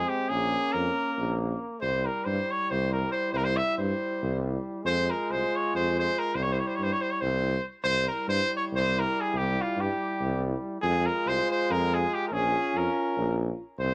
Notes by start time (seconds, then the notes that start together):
Already playing: G#3 C4
0.08 G4
0.29 A#1 A#3 C#4 G#4
0.72 F2 A#4
1.19 A#1
1.81 C2 G3 E4 C5
2.05 A#4
2.25 G2 C5
2.51 C#5
2.71 C2 C5
2.92 A#4
3.12 C5
3.33 C2 A#4 C5
3.44 C5
3.57 E5
3.78 G2 C5
4.22 C2
4.83 F2 G#3 F4 C5
5.10 A#4
5.30 C2 C5
5.56 C#5
5.75 F2 C5
5.99 C5
6.19 A#4
6.35 C2 G3 E4 C5
6.42 C#5
6.52 C5
6.59 C#5
6.67 C5
6.75 C#5
6.79 G2 C5
6.92 C#5
7.01 C5
7.11 C#5
7.21 C2 C5
7.84 C2 G3 E4 C5
8.08 A#4
8.28 G2 C5
8.57 C#5
8.72 C2 C5
8.99 A#4
9.21 G#4
9.33 C2 G4
9.61 F4
9.77 G2 G4
10.22 C2
10.80 F2 G#3 F4 G#4
11.06 A#4
11.26 C2 C5
11.51 C5
11.70 F2 A#4
11.94 G#4
12.14 G4
12.27 A#4
12.31 A#1 C#4 F4 G#4
12.74 F2 A#4
13.18 A#1
13.78 C2 C4 E4 C5